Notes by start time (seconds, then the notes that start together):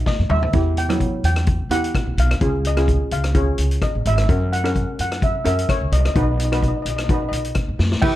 Already playing: B3 D#4 F#4
0.06 D#5, kick, snare
0.19 F#2
0.30 D#2 E5, mid tom
0.42 floor tom
0.53 E2 B3 E4 G4, kick, closed hi-hat
0.77 G5, closed hi-hat
0.89 F#3 B3 E4, cross-stick, closed hi-hat
1.00 kick, closed hi-hat
1.23 E2 G5, closed hi-hat
1.36 cross-stick, closed hi-hat
1.47 kick, closed hi-hat
1.69 E2 B3 E4 G4 F#5, closed hi-hat
1.84 closed hi-hat
1.95 kick, cross-stick, closed hi-hat
2.07 B1
2.17 B1 F5, closed hi-hat
2.31 cross-stick, closed hi-hat
2.41 C#2 C#4 F4 G#4, kick, closed hi-hat
2.65 D#5, closed hi-hat
2.77 C#4 F4 G#4, cross-stick, closed hi-hat
2.88 kick, closed hi-hat
3.11 C#2 F5, closed hi-hat
3.24 cross-stick, closed hi-hat
3.34 C#4 F4 G#4 C#5, kick, closed hi-hat
3.58 C#2, closed hi-hat
3.71 closed hi-hat
3.82 D#5, kick, cross-stick, closed hi-hat
3.95 G#1
4.05 G#1 E5, closed hi-hat
4.18 cross-stick, closed hi-hat
4.29 F#2 C#4 F#4 A#4, kick, closed hi-hat
4.53 F#5, closed hi-hat
4.64 C#4 F#4 A#4, cross-stick, closed hi-hat
4.76 kick, closed hi-hat
4.99 F#2 F#5, closed hi-hat
5.12 cross-stick, closed hi-hat
5.22 E5, kick, closed hi-hat
5.44 F#2 C#4 F#4 A#4 E5, closed hi-hat
5.59 closed hi-hat
5.69 C#5, kick, cross-stick, closed hi-hat
5.81 C#2
5.92 C2 D#5, closed hi-hat
6.01 D#5
6.05 D#5, cross-stick, closed hi-hat
6.16 B1 D#4 F#4 B4, kick, closed hi-hat
6.23 D#5
6.31 D#5
6.37 D#5, closed hi-hat
6.45 D#5
6.52 D#4 F#4 B4 D#5, cross-stick, closed hi-hat
6.60 D#5, kick, closed hi-hat
6.68 D#5
6.77 D#5
6.82 B1 D#5, closed hi-hat
6.90 D#5
6.97 D#5, cross-stick, closed hi-hat
7.04 D#5
7.09 D#4 F#4 B4, kick, closed hi-hat
7.14 D#5
7.22 D#5
7.29 B1 D#5
7.33 D#5, closed hi-hat
7.45 closed hi-hat
7.55 kick, cross-stick, closed hi-hat
7.68 F#2
7.79 F#2, snare
7.92 snare
8.02 E2 E4 G4 B4 E5 G5, kick, crash